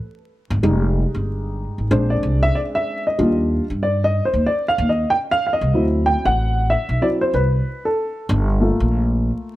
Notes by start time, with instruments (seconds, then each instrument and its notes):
0.50 upright bass G1
0.63 upright bass F1, upright piano G3 G#3 D#4
1.15 upright bass G1
1.78 upright bass G#1
1.91 upright bass A#1, upright piano G#3 C4 D4 C5
2.10 upright piano D5
2.23 upright bass C2
2.43 upright piano E5
2.55 upright piano D5
2.75 upright piano E5
3.07 upright piano D#5
3.18 upright bass D#2, upright piano G3 D4 F4
3.70 upright bass G2
3.83 upright piano D5
4.04 upright piano D#5
4.25 upright piano C5
4.33 upright bass D#2
4.46 upright piano D5
4.68 upright piano F5
4.78 upright bass D#2
4.89 upright piano D#5
5.10 upright piano G5
5.31 upright piano F5
5.47 upright piano F5
5.53 upright piano D#5
5.61 upright bass C2
5.74 upright bass D2, upright piano F#3 C4 E4
6.06 upright piano G5
6.25 upright bass A1, upright piano F#5
6.70 upright piano E5
6.89 upright bass B1
7.02 upright piano F#3 C4 E4 D5
7.21 upright piano C5
7.33 upright bass C2, upright piano B4
7.85 upright piano A4
8.29 upright bass G1
8.60 upright piano A3 A#3 F4
8.80 upright bass A#1